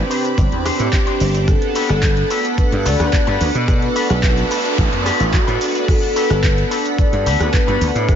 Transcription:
Already playing: C4 D4 G4 B4 B5 D6
0.10 D4 G4 B4 C5, open hi-hat, cabasa
0.25 closed hi-hat, cabasa
0.38 G1, muted clean electric guitar stroke, kick, closed hi-hat, cabasa
0.52 E2, closed hi-hat
0.64 C4 D4 G4 B4 C5, cross-stick, open hi-hat, cabasa
0.80 A2, closed hi-hat, cabasa
0.93 G4, kick, clap, closed hi-hat, cabasa
1.07 D4 G4 B4 C5, closed hi-hat
1.20 G1, open hi-hat, cabasa
1.34 muted clean electric guitar stroke, closed hi-hat, cabasa
1.47 B3 D4 A4 F#5 B5, kick, cross-stick, closed hi-hat, cabasa
1.62 closed hi-hat
1.75 F#4 G4 A4 B4, open hi-hat, cabasa
1.89 G1, cross-stick, closed hi-hat, cabasa
2.03 muted clean electric guitar stroke, kick, clap, closed hi-hat, cabasa
2.17 closed hi-hat
2.30 F#4 G4 A4 B4, open hi-hat, cabasa
2.45 closed hi-hat, cabasa
2.58 B4, muted clean electric guitar stroke, muted slap bass stroke, kick, closed hi-hat, cabasa
2.72 G2, closed hi-hat
2.84 D2 B3 D4 F#4 G4 A4 B4 D5 F#5, open hi-hat, cabasa
3.00 D2, cross-stick, closed hi-hat, cabasa
3.13 kick, clap, closed hi-hat, cabasa
3.27 G2 F#4 G4 A4 B4, closed hi-hat
3.41 D2 B4, open hi-hat, cabasa
3.55 B2, muted clean electric guitar stroke, closed hi-hat, cabasa
3.67 B3 D4 F#4 A4 D5, kick, cross-stick, closed hi-hat, noise sweep, cabasa
3.82 closed hi-hat
3.95 D4 F#4 A4 B4, open hi-hat, cabasa
4.10 B1, cross-stick, closed hi-hat, cabasa
4.23 muted clean electric guitar stroke, kick, clap, closed hi-hat, cabasa
4.37 closed hi-hat, cabasa
4.51 D4 F#4 A4 B4, open hi-hat, cabasa
4.65 closed hi-hat, cabasa
4.78 A1, muted clean electric guitar stroke, kick, closed hi-hat, cabasa
4.93 F#2, closed hi-hat
5.05 D4 F#4 A4 B4, cross-stick, open hi-hat, cabasa
5.20 A1, closed hi-hat, cabasa
5.33 F#4, kick, clap, closed hi-hat, cabasa
5.47 A2 B3 D4 F#4 A4 B4, closed hi-hat, cabasa
5.61 open hi-hat, cabasa
5.75 muted clean electric guitar stroke, closed hi-hat, cabasa
5.87 B3 D4 A4 F#5, kick, cross-stick, closed hi-hat, crash, cabasa
6.03 closed hi-hat
6.15 F#4 G4 A4 B4, open hi-hat, cabasa
6.30 G1, cross-stick, closed hi-hat, cabasa
6.43 B4, muted clean electric guitar stroke, kick, clap, closed hi-hat, cabasa
6.58 closed hi-hat
6.71 F#4 G4 A4 B4, open hi-hat, cabasa
6.85 closed hi-hat, cabasa
6.98 D5, muted clean electric guitar stroke, muted slap bass stroke, kick, closed hi-hat, cabasa
7.13 G2, closed hi-hat
7.25 D2 B3 D4 F#4 G4 A4 B4 F#5, open hi-hat, cabasa
7.40 D2, cross-stick, closed hi-hat, cabasa
7.53 B4, kick, clap, closed hi-hat, cabasa
7.67 G2 F#4 G4 A4 B4, closed hi-hat
7.81 D2, open hi-hat, cabasa
7.95 A2, muted clean electric guitar stroke, closed hi-hat, cabasa
8.08 C4 D4 G4 A4 B5 D6, kick, cross-stick, closed hi-hat, cabasa

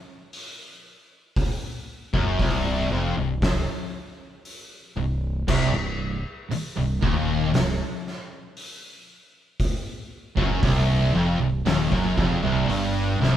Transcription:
0.33 open hi-hat
1.36 kick, open hi-hat
2.14 F#1 F#2, kick
2.39 C1 C2, kick, open hi-hat
2.90 F1 F2
3.17 C1 C2
3.42 kick, snare, open hi-hat
4.45 open hi-hat
4.96 C1 C2
5.48 C1 C2, kick, crash
5.73 C1 C2
6.51 muted fingered electric bass stroke, muted distorted electric guitar stroke, open hi-hat
6.77 C1 C2
7.03 D#1 D#2, kick
7.54 C1 C2, snare, open hi-hat
8.07 snare
8.57 open hi-hat
9.60 kick, open hi-hat
10.37 F#1 F#2, kick
10.62 C1 C2, kick, open hi-hat
11.13 F1 F2
11.40 C1 C2
11.66 D#1 D#2, snare, open hi-hat
11.91 F#1 F#2, kick
12.16 F1 F2, kick, snare
12.42 C1 C2
12.69 G1 G2, open hi-hat
13.20 C1 C2, snare

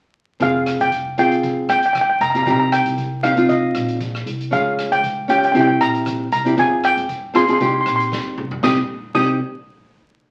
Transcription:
0.40 F1 C4 F4 G#4 F5, kick, closed hi-hat
0.66 cross-stick, closed hi-hat
0.80 F1 G5, closed hi-hat
0.92 kick, closed hi-hat
1.18 C4 F4 G#4 G5, closed hi-hat
1.31 closed hi-hat
1.43 kick, closed hi-hat
1.69 D2 G5, cross-stick, closed hi-hat
1.79 G5, closed hi-hat
1.86 G5
1.93 G5, kick, cross-stick, closed hi-hat
2.01 G5
2.10 G5
2.20 F1 A#5, closed hi-hat
2.30 C4 A#5
2.35 F4 G4 A#5, closed hi-hat
2.43 C2 C4 D#4 A#5, kick, closed hi-hat
2.47 G4 A#5
2.60 A#5
2.72 G5, cross-stick, closed hi-hat
2.86 C2, closed hi-hat
2.98 kick, closed hi-hat
3.23 C4 D#4 G4 F5, cross-stick, closed hi-hat
3.36 C4 D#4 F4, closed hi-hat
3.49 D#5, kick, closed hi-hat
3.75 A#1, cross-stick, closed hi-hat
3.88 closed hi-hat
4.01 kick, closed hi-hat
4.15 cross-stick
4.26 C2, closed hi-hat
4.41 closed hi-hat
4.51 C#2 C#4 F4 G#4 F5, kick, closed hi-hat
4.79 cross-stick, closed hi-hat
4.91 C#2 G5, closed hi-hat
5.04 kick, closed hi-hat
5.28 C#4 F4 G4 G5, closed hi-hat
5.38 G5
5.43 G5, closed hi-hat
5.52 C2 C4 E4 G4 G5, kick, closed hi-hat
5.60 G5
5.67 G5
5.81 A#1 A#5, cross-stick, closed hi-hat
5.94 closed hi-hat
6.06 kick, cross-stick, closed hi-hat
6.32 C2 A#5, closed hi-hat
6.45 C4 E4 G4, closed hi-hat
6.57 F2 C4 F4 G#4 G#5, kick, closed hi-hat
6.84 G5, cross-stick, closed hi-hat
6.97 F2, closed hi-hat
7.09 kick, closed hi-hat
7.34 C4 F4 G#4 C6, cross-stick, closed hi-hat
7.44 C4 C6, closed hi-hat
7.49 F4 G#4
7.53 C6
7.59 C2 C4 D#4 G4 C6, kick, closed hi-hat
7.66 C6
7.74 C6
7.81 C6
7.86 A#1 C6, cross-stick, closed hi-hat
7.96 C6, closed hi-hat
8.12 D2, kick, snare
8.38 C2, mid tom
8.51 floor tom
8.63 C2 C4 D#4 G4 D#6, kick, snare
9.14 C2 C4 D#4 G4 D#6, kick, crash

